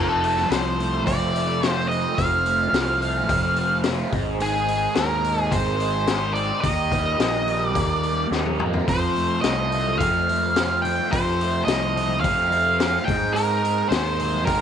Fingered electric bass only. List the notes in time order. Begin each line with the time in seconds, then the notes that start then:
Already playing: F1
0.50 C2
1.07 F1
2.18 F1
2.72 C2
3.28 F1
4.12 G#1
4.97 D#2
5.51 G#1
6.64 D#2
7.20 A#1
7.75 D#2
8.31 D#2
8.59 F2
8.88 F2
9.44 C2
10.00 F2
11.12 F2
11.67 C2
12.24 F2
13.08 G#2
13.91 D#2
14.48 G#2